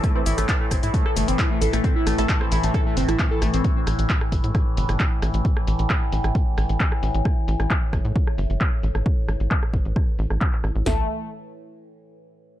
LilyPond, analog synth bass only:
\new Staff \with { instrumentName = "Analog synth bass" } { \clef bass \time 4/4 \key c \mixolydian \tempo 4 = 133 r8 a,,16 a,,16 r8 a,,16 a,16 r8 g,,16 g,,16 r8 a,,16 a,,16 | r8 a,,16 a,,16 r8 a,,16 a,,16 r8 g,,16 a,,16 r8 a,,16 a,,16 | r8 a,,16 a,,16 r8 a,,16 a,16 r8 g,,16 g,,16 r8 a,,16 a,,16 | r8 a,,16 a,,16 r8 a,,16 a,,16 r8 a,,16 a,,16 r8 a,,16 a,,16 |
r8 a,,16 a,,16 r8 a,,16 a,16 r8 g,,16 g,,16 r8 a,,16 a,,16 | r8 a,,16 a,,16 r8 a,,16 a,,16 r8 a,,16 a,,16 r8 a,,16 a,,16 | a,,8 r2. r8 | }